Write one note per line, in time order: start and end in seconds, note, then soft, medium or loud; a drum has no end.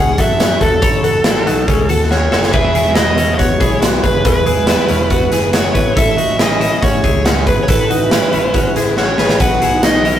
0.00 0.15 C#2 medium
0.00 0.19 C#4 medium
0.00 0.18 G#4 medium
0.00 0.21 F#5 medium
0.18 0.55 F#2 medium
0.18 0.39 F#4 medium
0.18 0.40 A4 medium
0.18 0.63 E5 medium
0.18 kick medium
0.18 snare soft
0.18 closed hi-hat medium
0.40 0.62 C#4 medium
0.40 0.60 F#4 medium
0.40 snare loud
0.40 closed hi-hat medium
0.61 0.83 E1 medium
0.61 0.83 F#4 medium
0.61 0.82 A4 medium
0.61 2.07 A4 medium
0.61 kick medium
0.61 closed hi-hat medium
0.82 1.19 F#1 medium
0.82 1.02 A4 medium
0.82 1.04 C#5 medium
0.82 kick loud
0.82 closed hi-hat loud
1.03 1.44 F#4 medium
1.03 1.44 A4 medium
1.03 closed hi-hat medium
1.24 1.44 A1 medium
1.24 snare loud
1.24 closed hi-hat medium
1.46 1.66 B1 medium
1.46 1.68 D#4 medium
1.46 1.67 F#4 medium
1.46 closed hi-hat medium
1.68 1.91 C#2 medium
1.68 1.90 C#4 medium
1.68 1.89 G#4 medium
1.68 kick medium
1.68 closed hi-hat medium
1.89 2.27 D#2 medium
1.89 2.10 F#4 medium
1.89 2.11 A4 medium
1.89 closed hi-hat medium
2.11 2.33 C#4 soft
2.11 2.32 F#4 medium
2.11 2.52 C#5 medium
2.11 snare medium
2.32 2.51 F#1 medium
2.32 2.54 F#4 medium
2.32 2.53 A4 medium
2.32 snare medium
2.43 snare medium
2.52 3.36 E1 medium
2.52 2.85 F#3 medium
2.52 2.85 G#3 medium
2.52 2.84 B3 medium
2.52 2.84 E4 medium
2.52 2.74 G#4 medium
2.52 2.75 B4 medium
2.52 2.94 E5 loud
2.52 kick loud
2.52 crash medium
2.75 2.95 E4 medium
2.75 2.97 G#4 medium
2.75 closed hi-hat medium
2.85 3.08 E2 medium
2.85 3.08 B2 medium
2.85 3.07 F#3 medium
2.85 3.07 G#3 medium
2.85 3.06 B3 medium
2.85 3.05 E4 medium
2.95 3.18 B3 medium
2.95 3.17 E4 medium
2.95 3.33 D#5 loud
2.95 snare loud
2.95 closed hi-hat medium
3.06 3.50 F#3 soft
3.06 3.49 G#3 soft
3.06 3.48 B3 soft
3.06 3.48 E4 medium
3.18 3.39 C#4 medium
3.18 3.39 E4 medium
3.18 closed hi-hat medium
3.34 3.79 C#5 medium
3.34 3.38 D#5 medium
3.39 3.58 E2 medium
3.39 3.60 B3 medium
3.39 3.61 F#4 medium
3.39 kick medium
3.39 closed hi-hat medium
3.49 3.72 F#3 soft
3.49 3.71 G#3 soft
3.49 3.70 B3 soft
3.49 3.69 E4 soft
3.60 3.97 B1 medium
3.60 3.82 E4 medium
3.60 3.82 G#4 medium
3.60 kick medium
3.60 closed hi-hat medium
3.70 3.93 F#3 soft
3.70 3.92 G#3 soft
3.70 3.91 B3 soft
3.70 3.90 E4 soft
3.82 4.04 B3 medium
3.82 4.03 F#4 medium
3.82 snare loud
3.82 closed hi-hat medium
3.92 4.23 F#3 soft
3.92 4.24 G#3 soft
3.92 4.24 B3 medium
3.92 4.25 E4 soft
4.03 4.22 F#1 medium
4.03 4.24 G#4 soft
4.03 4.24 B4 medium
4.03 4.25 B4 medium
4.03 kick medium
4.03 closed hi-hat medium
4.24 4.43 E1 loud
4.24 4.55 F#3 soft
4.24 4.55 G#3 medium
4.24 4.55 B3 medium
4.24 4.54 E4 medium
4.24 4.45 G#4 medium
4.24 4.46 B4 medium
4.24 5.59 B4 medium
4.24 kick loud
4.24 closed hi-hat loud
4.46 4.74 E1 medium
4.46 4.67 E4 medium
4.46 4.68 G#4 medium
4.46 closed hi-hat medium
4.56 4.79 E2 medium
4.56 4.79 B2 medium
4.56 4.78 F#3 medium
4.56 4.78 G#3 medium
4.56 4.77 B3 medium
4.56 4.76 E4 medium
4.67 4.90 B3 medium
4.67 4.88 E4 medium
4.67 snare loud
4.67 closed hi-hat medium
4.77 5.22 F#3 medium
4.77 5.22 G#3 soft
4.77 5.20 B3 medium
4.77 5.21 E4 medium
4.89 5.26 E1 medium
4.89 5.11 C#4 medium
4.89 5.10 E4 medium
4.89 closed hi-hat medium
5.10 5.33 B3 medium
5.10 5.32 F#4 medium
5.10 kick medium
5.10 closed hi-hat medium
5.21 5.43 F#3 soft
5.21 5.43 G#3 soft
5.21 5.42 B3 medium
5.21 5.41 E4 medium
5.31 5.69 F#1 medium
5.31 5.54 E4 medium
5.31 5.53 G#4 medium
5.31 snare soft
5.31 closed hi-hat medium
5.42 5.65 F#3 soft
5.42 5.64 G#3 soft
5.42 5.63 B3 soft
5.42 5.62 E4 soft
5.53 5.75 B3 soft
5.53 5.74 F#4 medium
5.53 5.98 C#5 medium
5.53 snare loud
5.53 closed hi-hat medium
5.63 5.74 F#3 soft
5.63 5.75 G#3 soft
5.63 5.75 B3 medium
5.63 5.74 E4 medium
5.74 6.66 A1 medium
5.74 6.29 A2 medium
5.74 6.28 E3 medium
5.74 6.28 A3 medium
5.74 6.27 C#4 medium
5.74 5.95 E4 medium
5.74 6.27 E4 medium
5.74 5.96 B4 medium
5.74 kick medium
5.74 closed hi-hat medium
5.96 6.18 E4 medium
5.96 6.17 A4 medium
5.96 6.38 E5 loud
5.96 kick loud
5.96 closed hi-hat loud
6.17 6.40 D#4 medium
6.17 6.39 F#4 medium
6.17 closed hi-hat medium
6.28 6.51 A2 soft
6.28 6.51 E3 medium
6.28 6.50 A3 medium
6.28 6.50 C#4 medium
6.28 6.48 E4 medium
6.39 6.60 C#4 medium
6.39 6.59 E4 medium
6.39 6.84 D#5 medium
6.39 snare loud
6.39 closed hi-hat medium
6.49 6.94 A3 soft
6.49 6.93 C#4 soft
6.49 6.91 E4 medium
6.61 6.82 C#4 medium
6.61 6.82 E4 medium
6.61 closed hi-hat medium
6.82 7.01 A2 loud
6.82 7.04 C#4 medium
6.82 7.03 F#4 medium
6.82 7.23 C#5 medium
6.82 kick loud
6.82 closed hi-hat medium
6.92 7.16 A3 soft
6.92 7.14 C#4 soft
6.92 7.13 E4 medium
7.04 7.49 C#2 medium
7.04 7.25 E4 medium
7.04 7.25 G#4 medium
7.04 kick medium
7.04 closed hi-hat medium
7.14 7.37 A3 soft
7.14 7.36 C#4 soft
7.14 7.34 E4 soft
7.25 7.47 C#4 medium
7.25 7.47 F#4 medium
7.25 snare loud
7.25 closed hi-hat medium
7.36 7.68 A3 soft
7.36 7.68 C#4 soft
7.36 7.68 E4 medium
7.47 7.65 G#1 medium
7.47 7.69 G#4 medium
7.47 7.68 B4 medium
7.47 7.54 B4 medium
7.47 kick medium
7.47 closed hi-hat medium
7.63 7.69 C#5 medium
7.68 7.87 A1 medium
7.68 8.00 E3 medium
7.68 8.00 A3 medium
7.68 8.00 C#4 medium
7.68 7.90 E4 medium
7.68 8.00 E4 medium
7.68 7.90 A4 medium
7.68 9.02 B4 medium
7.68 kick loud
7.68 closed hi-hat loud
7.90 8.18 A1 medium
7.90 8.12 D#4 medium
7.90 8.12 F#4 medium
7.90 closed hi-hat medium
8.01 8.23 A2 medium
8.01 8.23 E3 medium
8.01 8.23 A3 medium
8.01 8.22 C#4 medium
8.01 8.20 E4 medium
8.11 8.33 C#4 medium
8.11 8.32 E4 medium
8.11 snare loud
8.11 closed hi-hat medium
8.21 8.66 A3 soft
8.21 8.65 C#4 soft
8.21 8.63 E4 medium
8.33 8.70 A1 medium
8.33 8.54 C#4 medium
8.33 8.55 E4 medium
8.33 closed hi-hat medium
8.54 8.76 C#4 medium
8.54 8.76 F#4 medium
8.54 kick medium
8.54 closed hi-hat medium
8.65 8.86 A3 soft
8.65 8.86 C#4 soft
8.65 8.84 E4 medium
8.76 9.13 A1 medium
8.76 8.98 E4 medium
8.76 8.97 G#4 medium
8.76 snare soft
8.76 closed hi-hat medium
8.85 9.08 A3 soft
8.85 9.07 C#4 soft
8.85 9.05 E4 soft
8.97 9.19 C#4 medium
8.97 9.19 F#4 medium
8.97 9.42 C#5 medium
8.97 snare medium
9.07 9.39 A3 soft
9.07 9.40 C#4 soft
9.07 9.40 E4 soft
9.18 9.37 A1 medium
9.18 9.41 G#4 soft
9.18 9.39 B4 medium
9.18 snare medium
9.29 snare medium
9.39 10.19 B1 medium
9.39 9.71 F#3 medium
9.39 9.71 B3 medium
9.39 9.79 D#4 medium
9.39 9.71 D#4 medium
9.39 9.79 F#4 medium
9.39 9.61 F#4 medium
9.39 9.70 F#4 medium
9.39 9.79 B4 medium
9.39 9.62 B4 medium
9.39 9.81 F#5 loud
9.39 kick loud
9.39 closed hi-hat loud
9.39 tambourine soft
9.62 9.84 E4 medium
9.62 9.83 G#4 medium
9.62 closed hi-hat medium
9.62 tambourine medium
9.72 9.94 B2 soft
9.72 9.94 F#3 medium
9.72 9.94 B3 medium
9.72 9.93 D#4 medium
9.72 9.91 F#4 medium
9.83 10.19 D#4 medium
9.83 10.05 D#4 medium
9.83 10.19 F#4 medium
9.83 10.05 F#4 medium
9.83 10.19 B4 medium
9.83 10.19 D#5 loud
9.83 snare loud
9.83 closed hi-hat medium
9.83 tambourine medium
9.92 10.19 B3 soft
9.92 10.19 D#4 soft
9.92 10.19 F#4 soft
10.04 10.19 C#4 medium
10.04 10.19 E4 medium
10.04 closed hi-hat medium